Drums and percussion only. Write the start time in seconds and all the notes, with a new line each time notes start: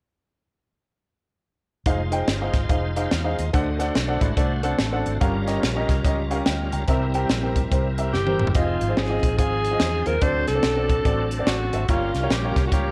1.86 kick, closed hi-hat
2.12 closed hi-hat
2.28 snare, closed hi-hat
2.54 kick, snare, closed hi-hat
2.70 kick, closed hi-hat
2.96 closed hi-hat
3.11 snare, closed hi-hat
3.38 closed hi-hat
3.53 kick, closed hi-hat
3.80 snare, closed hi-hat
3.95 snare, closed hi-hat
4.21 kick, closed hi-hat
4.37 kick, closed hi-hat
4.63 closed hi-hat
4.78 snare, closed hi-hat
5.06 closed hi-hat
5.21 kick, closed hi-hat
5.47 snare, closed hi-hat
5.63 snare, closed hi-hat
5.89 kick, snare, closed hi-hat
6.04 kick, closed hi-hat
6.31 closed hi-hat
6.46 snare, closed hi-hat
6.72 closed hi-hat
6.88 kick, closed hi-hat
7.14 closed hi-hat
7.29 snare, closed hi-hat
7.56 kick, closed hi-hat
7.72 kick, closed hi-hat
7.98 closed hi-hat
8.14 snare
8.27 high tom
8.40 mid tom
8.47 floor tom
8.55 kick, closed hi-hat
8.81 closed hi-hat
8.97 snare, closed hi-hat
9.23 kick, closed hi-hat
9.38 kick, closed hi-hat
9.65 closed hi-hat
9.80 snare, closed hi-hat
10.06 closed hi-hat
10.22 kick, closed hi-hat
10.48 snare, closed hi-hat
10.63 snare, closed hi-hat
10.89 kick, closed hi-hat
11.05 kick, closed hi-hat
11.31 closed hi-hat
11.47 snare, closed hi-hat
11.73 closed hi-hat
11.88 kick, closed hi-hat
12.15 snare, closed hi-hat
12.30 snare, closed hi-hat
12.56 kick, snare, closed hi-hat
12.72 kick, closed hi-hat